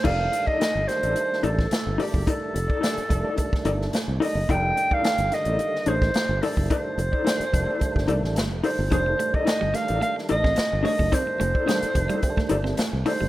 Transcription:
<<
  \new Staff \with { instrumentName = "Clarinet" } { \time 4/4 \key f \major \tempo 4 = 108 f''8. ees''8. c''4 a'4 g'8 | a'2. r8 ees''8 | g''8. f''8. ees''4 c''4 a'8 | c''2. r8 c''8 |
c''8. ees''8. f''8 f''8 ees''4 ees''8 | c''2. r8 c''8 | }
  \new Staff \with { instrumentName = "Clean electric guitar" } { \time 4/4 \key f \major <ees' a' d''>16 r8 <ees' a' d''>16 <ees' a' d''>16 r8 <ees' a' d''>16 r8 <ees' a' d''>16 r8. <ees' a' d''>16 r16 | <ees' a' d''>16 r8 <ees' a' d''>16 <ees' a' d''>16 r8 <ees' a' d''>16 r8 <ees' a' d''>16 r8. <ees' a' d''>16 r16 | <ees' a' d''>16 r8 <ees' a' d''>16 <ees' a' d''>16 r8 <ees' a' d''>16 r8 <ees' a' d''>16 r8. <ees' a' d''>16 r16 | <ees' a' d''>16 r8 <ees' a' d''>16 <ees' a' d''>16 r8 <ees' a' d''>16 r8 <ees' a' d''>16 r8. <ees' a' d''>16 r16 |
<ees' a' d''>16 r8 <ees' a' d''>16 <ees' a' d''>16 r8 <ees' a' d''>16 r8 <ees' a' d''>16 r8. <ees' a' d''>16 r16 | <ees' a' d''>16 r8 <ees' a' d''>16 <ees' a' d''>16 r8 <ees' a' d''>16 r8 <ees' a' d''>16 r8. <ees' a' d''>16 r16 | }
  \new Staff \with { instrumentName = "Clean electric guitar" } { \time 4/4 \key f \major r1 | r1 | r1 | r1 |
f16 r16 a16 r8 g16 a16 r16 a16 r8 c'16 r8 a16 a16 | c'16 r16 a16 r16 g16 r8 g16 r16 a16 r16 c'16 r8 a16 g16 | }
  \new Staff \with { instrumentName = "Tonewheel organ" } { \clef bass \time 4/4 \key f \major <ees g a c' d'>4 r8 <ees g a d'>4. r8 <ees g a d'>8~ | <ees g a d'>8 r8 <ees g a d'>8 <ees g a d'>8 <ees g aes a d'>4 r8 <ees g a d'>8 | <ees g a d'>4 r8 <d ees g a>4. r8 <ees g a d'>8~ | <ees g a d'>8 r8 <ees g a d'>8 <ees g a d'>8 <ees g a d'>4 r8 <ees g a d'>8 |
<ees g a des' d'>4 r8 <ees g a d'>4. r8 <ees g aes a d'>8~ | <ees g aes a d'>8 r8 <ees g a d'>8 <ees g a d'>8 <ees g a c' d'>4 r8 <ees g a d'>8 | }
  \new Staff \with { instrumentName = "Fingered electric bass" } { \clef bass \time 4/4 \key f \major f,,8 r8. g,,16 r16 a,,16 r8 a,,8 r16 g,,16 r16 fis,,16 | r8 f,,16 r8. f,,16 r8. g,,8 r16 c,16 r16 fis,,16 | f,,8 r8. g,,16 r16 a,,16 r8 a,,8 r16 g,,16 r16 fis,,16 | r8 f,,16 r8. f,,16 r8 g,,16 c,16 a,,16 g,,16 f,,16 r16 g,,16 |
f,,8 r8. g,,16 r16 a,,16 r8 a,,8 r16 g,,16 r16 fis,,16 | r8 f,,16 r8. f,,16 r8. g,,8 r16 c,16 r16 fis,,16 | }
  \new DrumStaff \with { instrumentName = "Drums" } \drummode { \time 4/4 <cymc bd>8 hh16 bd16 <hh sn>8 <hh sn>16 hh16 hh16 sn16 hh16 <bd sn>16 <hh sn>8 hho16 bd16 | <hh bd>8 hh16 bd16 <hh sn>16 hh16 <hh bd>8 <hh bd>16 <bd sn>16 hh16 sn16 <hh sn>8 hho8 | <hh bd>8 hh16 bd16 <hh sn>16 hh16 <hh sn>16 hh16 hh16 sn16 hh16 <bd sn>16 <hh sn>8 hho16 bd16 | <hh bd>8 hh16 bd16 <hh sn>16 hh16 <hh bd>8 <hh bd>16 <bd sn>16 hh16 sn16 <hh sn>8 hho8 |
<hh bd>8 hh16 bd16 <hh sn>8 <hh sn>16 hh16 hh16 sn16 hh16 <bd sn>16 <hh sn>8 hho16 bd16 | <hh bd>8 hh16 bd16 <hh sn>16 hh16 <hh bd>16 hh16 <hh bd>16 <bd sn>16 hh16 sn16 <hh sn>8 hho8 | }
>>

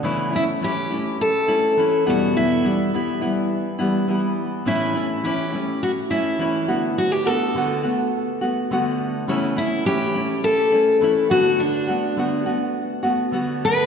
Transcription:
<<
  \new Staff \with { instrumentName = "Steel-string acoustic guitar" } { \time 4/4 \key a \mixolydian \tempo 4 = 104 r8 e'8 g'4 a'4. fis'8 | e'4. r2 r8 | e'4 g'4 fis'8 e'4. | fis'16 g'16 a'2 r4. |
r8 e'8 g'4 a'4. fis'8 | d'4. r2 b'8 | }
  \new Staff \with { instrumentName = "Nylon-string guitar" } { \time 4/4 \key a \mixolydian <cis e a cis' e'>8 <a cis' e'>8 <e a cis' e'>8 <a cis' e'>4 <a cis' e'>8 <e a cis' e'>8 <e, b, e g b e'>8~ | <e, b, e g b e'>8 <e g b e'>8 <e g b e'>8 <e g b e'>4 <e g b e'>8 <e g b e'>4 | <a, e a cis' e'>8 <a cis' e'>8 <e a cis' e'>8 <a cis' e'>4 <a cis' e'>8 <e a cis' e'>8 <d a b fis'>8~ | <d a b fis'>8 <a b fis'>8 <d a b fis'>8 <a b fis'>4 <a b fis'>8 <d a b fis'>4 |
<cis e a cis' e'>8 <a cis' e'>8 <e a cis' e'>8 <a cis' e'>4 <a cis' e'>8 <e a cis' e'>8 <d a b fis'>8~ | <d a b fis'>8 <a b fis'>8 <d a b fis'>8 <a b fis'>4 <a b fis'>8 <d a b fis'>4 | }
>>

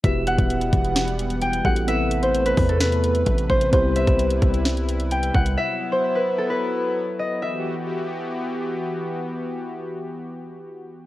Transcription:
<<
  \new Staff \with { instrumentName = "Harp" } { \time 4/4 \key e \minor \tempo 4 = 130 e''8 fis''2~ fis''8 g''8 fis''8 | e''8. c''8 b'8 a'16 b'4. c''8 | c''8 e''2~ e''8 g''8 fis''8 | e''8. c''8 b'8 a'16 b'4. dis''8 |
e''2. r4 | r1 | }
  \new Staff \with { instrumentName = "Tine electric piano" } { \time 4/4 \key e \minor <b e' fis' g' b'>2.~ <b e' fis' g' b'>8 <b e' fis' g' a'>8 | <b c' e' a' b'>1 | <b c' e' g' b'>1 | r1 |
r1 | r1 | }
  \new Staff \with { instrumentName = "Analog synth pad" } { \time 4/4 \key e \minor <e g b fis''>1 | <c a b'>1 | <g e'>1 | <fis b e'>1 |
<e b fis' g'>1~ | <e b fis' g'>1 | }
  \new Staff \with { instrumentName = "808-style bass" } { \clef bass \time 4/4 \key e \minor e,,8. dis,,8. e,,2 a,,8~ | a,,4. e,4. a,,8 a,,8 | c,8. c,8. c,2 c,8 | r1 |
r1 | r1 | }
  \new DrumStaff \with { instrumentName = "Drums" } \drummode { \time 4/4 <hh bd>8 hh16 <hh bd>16 hh16 hh16 <hh bd>16 hh16 <hh sn>16 hh16 hh16 hh16 hh16 hh16 bd16 hh16 | hh8 hh16 hh16 hh16 hh16 <hho bd>16 hh16 <hh sn>16 hh16 hh16 hh16 <hh bd>16 hh16 bd16 hh16 | <hh bd>8 hh16 <hh bd>16 hh16 hh16 <hh bd>16 hh16 <hh sn>16 hh16 hh16 hh16 hh16 hh16 bd16 hh16 | r4 r4 r4 r4 |
r4 r4 r4 r4 | r4 r4 r4 r4 | }
>>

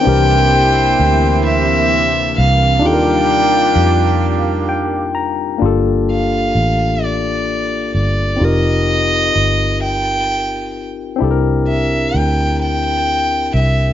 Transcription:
<<
  \new Staff \with { instrumentName = "Violin" } { \time 6/8 \key g \minor \tempo 4. = 43 g''4. e''4 f''8 | g''2 r4 | r8 f''4 d''4 d''8 | ees''4. g''4 r8 |
r8 e''8 g''8 g''4 e''8 | }
  \new Staff \with { instrumentName = "Horn section" } { \time 6/8 \key g \minor <e' g' c''>2~ <e' g' c''>8 r8 | <bes d' g'>2~ <bes d' g'>8 r8 | r2. | r2. |
r2. | }
  \new Staff \with { instrumentName = "Tine electric piano" } { \time 6/8 \key g \minor << { r2. | r2 g''8 bes''8 | r2. | r2. |
r2. | } \\ { <e c' d' g' bes'>2. | <d' ees' f' g' a' bes'>2. | <bes d' f' g' a'>2. | <c' ees' f' g' bes'>2. |
<c' d' e' g' a' bes'>2. | } >> }
  \new Staff \with { instrumentName = "Analog synth pad" } { \clef bass \time 6/8 \key g \minor << { <e bes>2. | <g f'>2. | r2. | r2. |
r2. | } \\ { c2.~ | c2. | r2. | r2. |
r2. | } >> }
  \new Staff \with { instrumentName = "Fingered electric bass" } { \clef bass \time 6/8 \key g \minor c,4 d,4. c,8 | ees,4 f,2 | g,,4 a,,4. g,,8 | f,,4 g,,2 |
c,4 d,4. c,8 | }
>>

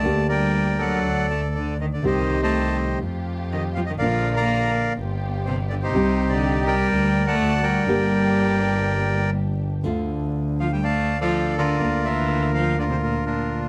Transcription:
<<
  \new Staff \with { instrumentName = "Bandoneon" } { \time 4/4 \key g \minor \tempo 4 = 122 << { a''8 g''4 fis''4 a''8 d''8 ees''16 d''16 | ees''8. a''8. r4. ees''8 f''16 ees''16 | f''8. bes''8. r4. c''8 d''16 c''16~ | c''8. d''8. g''4~ g''16 a''8. g''8~ |
g''2. r4 | \key d \minor r4. f''16 g''16 a''8. f''8. d''8~ | d''8 e''4 f''8 d''16 c''16 bes'8 bes'8. r16 | } \\ { d''8 <bes' d''>4 <a' d''>2 r8 | <g' c''>8. <c'' ees''>4~ <c'' ees''>16 r2 | <bes' d''>8. <d'' f''>4~ <d'' f''>16 r4. r16 <ees' g'>16~ | <ees' g'>8. g'8. <bes' d''>4~ <bes' d''>16 <d'' fis''>8. <bes' d''>8~ |
<bes' d''>2. r4 | r2 <d'' f''>8. <a' d''>8. <f' bes'>8~ | <f' bes'>8 bes'4. <f' bes'>4 <d' f'>4 | } >> }
  \new Staff \with { instrumentName = "String section" } { \time 4/4 \key g \minor r1 | <c' ees' g'>2 <a f' g'>2 | <bes d' f'>2 <b f' g'>2 | <c' g'>2 <bes d' g'>4 <a d' fis'>4 |
<bes d' g'>1 | \key d \minor r1 | r1 | }
  \new Staff \with { instrumentName = "Nylon-string guitar" } { \time 4/4 \key g \minor <d bes d' g'>2 r2 | <c ees g c' g'>2 r2 | <d bes d' f'>2 r2 | <c g c' g'>2 r2 |
<d g bes d' g'>1 | \key d \minor <d a d' f'>1 | <d bes d'>1 | }
  \new Staff \with { instrumentName = "Cello" } { \clef bass \time 4/4 \key g \minor a8 g4 fis4 a8 d8 ees16 d16 | ees8. a8. r4. ees8 f16 ees16 | f8. bes8. r4. c8 d16 c16~ | c8. d8. g4~ g16 a8. g8~ |
g2. r4 | \key d \minor r4. f16 g16 a8. f8. d8~ | d8 e4 f8 d16 c16 bes,8 bes,8. r16 | }
  \new Staff \with { instrumentName = "Double bass" } { \clef bass \time 4/4 \key g \minor d,2 d,2 | c,2 f,2 | bes,,2 g,,2 | c,2 d,4 d,4 |
g,,1 | \key d \minor d,1 | d,1 | }
>>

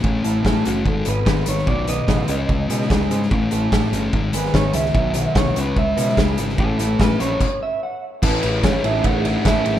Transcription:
<<
  \new Staff \with { instrumentName = "Clean electric guitar" } { \time 4/4 \key a \lydian \tempo 4 = 147 r4. fis'8 a'8 b'4 cis''8 | d''8 dis''2. r8 | r2 r8 b'8 cis''8 e''8~ | e''4 cis''8 b'8 e''4 r4 |
a'4 b'8 cis''4 e''8 fis''8 r8 | b'4 cis''8 e''8 fis''4 e''4 | }
  \new Staff \with { instrumentName = "Overdriven electric guitar" } { \time 4/4 \key a \lydian r8 <a cis' e' a'>8 <a cis' e' a'>8 r4 <gis b dis' b'>8 <gis b dis' b'>8 r8 | r8 <fis b dis' b'>8 <fis b dis' b'>8 r4 <gis cis' e' gis'>8 <gis cis' e' gis'>8 r8 | r8 <a cis' e' a'>8 <a cis' e' a'>8 r4 <gis b dis' gis'>8 <gis b dis' gis'>8 r8 | r8 <fis b dis' fis'>8 <fis b dis' fis'>8 r4 <e gis cis' e'>8 <e gis cis' e'>8 r8 |
r8 <e a cis' e'>8 <e a cis' e'>8 r2 r8 | <e a cis' a'>8 r4 <e a cis' a'>8 r4 <e a cis' a'>8 r8 | }
  \new Staff \with { instrumentName = "Distorted electric guitar" } { \clef bass \time 4/4 \key a \lydian <a, a cis'>8 <a, a>8 <a, a>8 <a, a cis'>8 <gis, dis gis>8 <gis, dis>8 <gis, dis>8 <gis, dis>8 | <b, dis fis>8 <b, dis>8 <b, dis>8 <cis gis cis'>8 <cis gis>8 <cis gis>8 <cis gis>8 <cis gis>8 | <a, a cis'>8 <a, a>8 <a, a>8 <a, a cis'>8 <gis, dis gis>8 <gis, dis>8 <gis, dis>8 <gis, dis>8 | <b, dis fis>8 <b, dis>8 <b, dis>8 <cis gis cis'>8 <cis gis>8 <cis gis>8 <cis gis>8 <cis gis>8 |
<a, a cis'>8 <a, a>8 <a, a>8 <a, a cis'>8 r2 | <a, e a cis' e'>8 <a cis' e'>8 <e a cis' e'>4. <a cis' e'>8 <a, e a cis' e'>8 <a cis' e'>8 | }
  \new Staff \with { instrumentName = "Picked electric bass" } { \clef bass \time 4/4 \key a \lydian a,,8 a,,8 a,,8 fis,,8 gis,,8 gis,,8 gis,,8 gis,,8 | b,,4 a,,8 cis,8 cis,8 b,8 cis,8 gis,8 | a,,8 a,,8 a,,8 g,,8 gis,,8 gis,,8 gis,,8 cis,8 | b,,4 c,8 cis,8 cis,8 b,8 cis,8 gis,,8 |
a,,8 a,,8 a,,8 bes,,8 r2 | a,,8 a,,8 a,,8 a,,8 a,,4 a,,8 a,,8 | }
  \new DrumStaff \with { instrumentName = "Drums" } \drummode { \time 4/4 bd8 hh8 <bd sn>8 hh8 bd8 hh8 <bd sn>8 hh16 sn16 | bd8 hh8 <bd sn>8 hh8 bd8 hh16 sn16 <bd sn>8 hh16 sn16 | bd8 hh8 <bd sn>8 hh8 bd8 hh16 sn16 <bd sn>8 hh16 sn16 | bd8 hh8 <bd sn>8 hh8 bd8 hh16 sn16 <bd sn>8 hh16 sn16 |
bd8 hh8 <bd sn>8 hh8 <cymc bd>4 r4 | <cymc bd>8 cymr8 <bd cymr sn>8 cymr8 <bd cymr>8 cymr8 <bd cymr sn>8 cymr8 | }
>>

